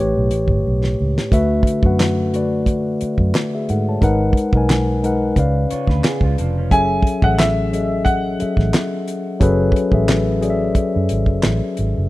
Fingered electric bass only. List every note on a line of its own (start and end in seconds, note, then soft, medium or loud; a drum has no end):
0.00 0.13 A1 loud
0.17 0.33 B1 medium
0.33 0.47 A1 medium
0.49 0.61 G1 medium
0.67 0.94 B1 medium
1.01 1.15 C#2 medium
1.33 1.60 D2 loud
1.84 2.96 F#2 medium
3.02 muted fingered electric bass stroke soft
3.19 3.31 F#2 medium
3.70 3.97 G#2 medium
4.03 4.30 G#1 loud
4.54 5.32 B1 medium
5.38 5.65 C#2 medium
5.72 muted fingered electric bass stroke soft
5.89 6.01 D2 medium
6.22 6.35 C#2 medium
6.40 6.73 F1 medium
6.73 7.00 F#1 medium
7.24 8.35 A1 medium
8.42 muted fingered electric bass stroke soft
8.58 8.70 A1 medium
9.42 9.69 F#1 loud
9.93 10.71 A1 medium
10.96 11.08 F#2 medium
11.11 11.27 G#1 medium
11.27 11.40 F#1 medium
11.45 11.60 A1 medium
11.79 11.93 G#1 medium
11.98 12.09 F#1 medium